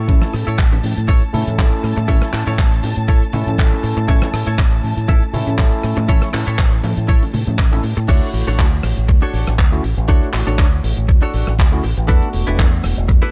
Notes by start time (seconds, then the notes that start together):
Already playing: E4 A4 C#5
0.07 A1 A3 C#4 E4 A4 A5, kick, closed hi-hat, high conga
0.22 cross-stick, muted conga
0.33 A2, cross-stick, open hi-hat
0.47 A2 E4 A4 C#5, closed hi-hat
0.58 A1, kick, clap, closed hi-hat
0.72 muted clean electric guitar stroke, closed hi-hat, muted conga
0.83 A2, open hi-hat, high conga
0.97 A2, closed hi-hat
1.08 A1 E4 A4 C#5, kick, closed hi-hat, muted conga
1.22 closed hi-hat
1.33 A2 A3 C#4 E4 A4, muted clean electric guitar stroke, open hi-hat, low conga
1.47 A2, closed hi-hat, high conga
1.58 A1 A3 C#4 E4 A4, kick, clap, closed hi-hat, muted conga
1.72 closed hi-hat
1.83 A2, muted clean electric guitar stroke, cross-stick, open hi-hat
1.97 A2, muted clean electric guitar stroke, closed hi-hat, muted conga
2.08 A1 A3 C#4 E4 A4 C#5, kick, closed hi-hat, high conga
2.22 cross-stick
2.33 A2, cross-stick, clap, open hi-hat
2.47 A2 E4 A4 C#5, closed hi-hat, muted conga
2.58 A1, kick, clap, closed hi-hat
2.72 muted clean electric guitar stroke, closed hi-hat
2.83 A2, open hi-hat, muted conga, high conga
2.97 A2, closed hi-hat
3.08 A1 E4 A4 C#5, kick, closed hi-hat
3.23 closed hi-hat
3.33 A2 A3 C#4 E4 A4, muted clean electric guitar stroke, open hi-hat, muted conga, low conga
3.47 A2, closed hi-hat, high conga
3.58 A1 A3 C#4 E4 A4, kick, clap, closed hi-hat
3.73 closed hi-hat, muted conga
3.83 A2, muted clean electric guitar stroke, open hi-hat
3.97 A2, muted clean electric guitar stroke, closed hi-hat
4.08 A1 A3 C#4 E4 A4 C#5, kick, closed hi-hat, high conga
4.22 cross-stick, muted conga
4.33 A2, cross-stick, open hi-hat
4.47 A2 E4 A4 C#5, closed hi-hat
4.58 A1, kick, clap, closed hi-hat, muted conga
4.72 muted clean electric guitar stroke, closed hi-hat
4.84 A2, open hi-hat, high conga
4.97 A2, closed hi-hat
5.08 A1 E4 A4 E5, kick, closed hi-hat, muted conga
5.23 closed hi-hat
5.33 A2 A3 C#4 E4 A4, muted clean electric guitar stroke, open hi-hat, low conga
5.46 A2, closed hi-hat, muted conga, high conga
5.58 A1 A3 C#4 E4 A4, kick, clap, closed hi-hat
5.72 closed hi-hat
5.83 A2, muted clean electric guitar stroke, cross-stick, open hi-hat
5.97 A2, muted clean electric guitar stroke, closed hi-hat, muted conga
6.08 A1 A3 C#4 E4 A4 C#5, kick, closed hi-hat, high conga
6.22 cross-stick, closed hi-hat
6.33 A2, cross-stick, clap, open hi-hat, muted conga
6.47 A2 E4 A4 C#5, closed hi-hat
6.59 A1, kick, clap, closed hi-hat
6.72 muted clean electric guitar stroke, closed hi-hat
6.83 A2, open hi-hat, muted conga, high conga
6.97 A2, closed hi-hat
7.08 A1 E4 A4 C#5, kick, closed hi-hat
7.22 open hi-hat, muted conga
7.33 A2, muted clean electric guitar stroke, open hi-hat, low conga
7.47 A2, closed hi-hat, high conga
7.58 A1, kick, clap, closed hi-hat
7.72 A3 C#4 E4 A4, closed hi-hat, muted conga
7.83 A2, muted clean electric guitar stroke, open hi-hat
7.97 A2, muted clean electric guitar stroke, closed hi-hat
8.08 D2 A3 D4 E4 F#4 A4 C#5, kick, closed hi-hat, crash
8.22 closed hi-hat
8.33 A1, open hi-hat
8.47 A1 D4 F#4 A4 C#5, closed hi-hat
8.58 D2, kick, clap, closed hi-hat
8.83 A1, muted clean electric guitar stroke, cross-stick, open hi-hat
8.97 A1, closed hi-hat
9.08 D2, muted clean electric guitar stroke, kick, closed hi-hat
9.22 D4 F#4 A4 C#5
9.33 A1, open hi-hat
9.47 A1, cross-stick, closed hi-hat
9.59 D2, kick, clap, closed hi-hat
9.72 A3 C#4 E4 F#4, closed hi-hat
9.83 A1, muted clean electric guitar stroke, open hi-hat
9.97 A1, closed hi-hat
10.08 D2 A3 D4 E4 F#4 A4 C#5, kick, closed hi-hat
10.23 closed hi-hat
10.33 A1, clap, open hi-hat
10.47 A1 D4 F#4 A4 C#5, closed hi-hat
10.59 D2, kick, clap, closed hi-hat
10.83 A1, muted clean electric guitar stroke, open hi-hat
10.97 A1, closed hi-hat
11.09 D2, muted clean electric guitar stroke, kick, closed hi-hat
11.22 D4 F#4 A4 C#5
11.34 A1, open hi-hat
11.47 A1, cross-stick, closed hi-hat
11.58 D2, kick, clap, closed hi-hat
11.72 A3 C#4 E4 F#4, closed hi-hat
11.84 A1, muted clean electric guitar stroke, open hi-hat
11.97 A1, closed hi-hat
12.08 A3 B3 D4 E4 F#4 A4 B4, kick, closed hi-hat
12.22 closed hi-hat
12.33 E1, open hi-hat
12.47 E1 D4 E4 A4 B4, closed hi-hat
12.59 E2, kick, clap, closed hi-hat
12.83 E1, muted clean electric guitar stroke, cross-stick, open hi-hat
12.97 E1, closed hi-hat
13.08 E2, muted clean electric guitar stroke, kick, closed hi-hat
13.22 D4 E4 A4 B4